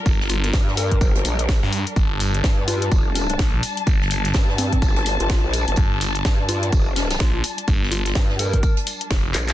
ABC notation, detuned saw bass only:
X:1
M:4/4
L:1/16
Q:"Swing 16ths" 1/4=126
K:Gm
V:1 name="Detuned saw bass" clef=bass
G,,,4 z8 z G,,2 z | G,,,4 z8 B,,,2 z2 | G,,,4 z12 | G,,,4 z8 B,,,2 z2 |
G,,,4 z8 F,,,2 z2 |]